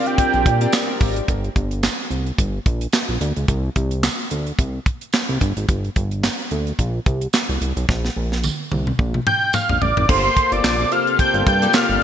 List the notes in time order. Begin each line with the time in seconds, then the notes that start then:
Already playing: C3 G3 A#3 C4 D4 F4 G4 A#4 D5
0.06 G5, closed hi-hat
0.18 kick, closed hi-hat
0.33 A#1, closed hi-hat
0.46 A#2, kick, closed hi-hat
0.60 C4 F4 G4 A#4 D5, closed hi-hat
0.72 snare, clap, tambourine
1.01 G#1, kick, open hi-hat
1.16 closed hi-hat
1.28 G1, kick, closed hi-hat
1.44 closed hi-hat
1.56 G1, kick, closed hi-hat
1.71 closed hi-hat
1.83 snare, clap, tambourine
2.11 C2, closed hi-hat
2.26 closed hi-hat
2.38 G1, kick, closed hi-hat
2.66 A#1, kick, closed hi-hat
2.81 closed hi-hat
2.93 snare, clap, tambourine
3.09 A#1
3.21 D2, closed hi-hat
3.36 C#2, closed hi-hat
3.48 C2, kick, closed hi-hat
3.76 C2, kick, closed hi-hat
3.91 closed hi-hat
4.03 snare, clap, tambourine
4.31 D2, closed hi-hat
4.47 closed hi-hat
4.59 C2, kick, closed hi-hat
4.86 kick, closed hi-hat
5.01 closed hi-hat
5.13 snare, clap, tambourine
5.29 C2, closed hi-hat
5.41 G1, kick, closed hi-hat
5.57 G#1, closed hi-hat
5.69 G1, kick, closed hi-hat
5.84 closed hi-hat
5.96 G1, kick, closed hi-hat
6.11 closed hi-hat
6.24 snare, clap, tambourine
6.39 closed hi-hat
6.51 D2, closed hi-hat
6.67 closed hi-hat
6.79 A#1, kick, closed hi-hat
7.06 C2, kick, closed hi-hat
7.21 closed hi-hat
7.33 snare, clap, tambourine
7.49 C2, closed hi-hat
7.61 C2, closed hi-hat
7.77 B1, closed hi-hat
7.89 A#1, kick, snare
8.05 snare
8.16 A#1
8.32 snare
8.44 high tom, tambourine
8.72 C2, high tom
8.87 mid tom
8.99 A#1, kick
9.14 mid tom
9.27 G6, mid tom
9.53 F6, mid tom, tambourine
9.69 A#1, floor tom
9.81 A1 D6, floor tom
9.97 G#1, floor tom
10.09 G1 C3 A#3 F4 G4 A4 C5 C6, kick, crash
10.37 kick, closed hi-hat
10.52 G1 D6, closed hi-hat
10.64 A#1, snare, clap, tambourine
10.79 closed hi-hat
10.91 A#3 F4 G4 A4 C5 F6, closed hi-hat
11.07 closed hi-hat
11.19 G6, kick, closed hi-hat
11.34 G1, closed hi-hat
11.47 G2 G6, kick, closed hi-hat
11.62 A#3 F4 G4 A4 D5, closed hi-hat
11.73 F6, snare, clap, tambourine
11.89 G1, closed hi-hat